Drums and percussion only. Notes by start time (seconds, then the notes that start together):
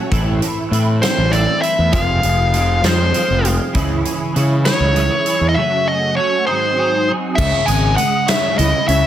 0.12 kick, closed hi-hat
0.42 closed hi-hat
0.73 closed hi-hat
1.03 snare, closed hi-hat
1.33 closed hi-hat
1.63 closed hi-hat
1.93 kick, closed hi-hat
2.23 closed hi-hat
2.54 closed hi-hat
2.84 snare, closed hi-hat
3.14 closed hi-hat
3.45 closed hi-hat
3.75 kick, closed hi-hat
4.05 closed hi-hat
4.36 closed hi-hat
4.65 snare, closed hi-hat
4.96 closed hi-hat
5.26 closed hi-hat
7.38 kick, crash
7.68 closed hi-hat
7.98 closed hi-hat
8.28 snare, closed hi-hat
8.59 closed hi-hat
8.89 closed hi-hat